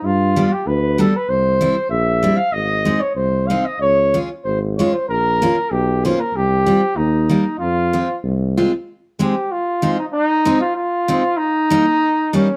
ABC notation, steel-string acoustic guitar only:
X:1
M:2/4
L:1/8
Q:1/4=95
K:Fm
V:1 name="Steel-string acoustic guitar"
z [G,=B,=D] z [G,B,D] | z [G,C=E] z [G,CE] | z [A,CE] z [A,CE] | z [A,DF] z [A,DF] |
z [B,DF] z [B,DF] | z [G,CF] z [G,B,E] | z [A,CF] z [A,CF] | [K:Ab] z [A,CE] z [A,CE] |
z [A,CE] z [A,CE] | z [G,B,E] z [G,B,E] |]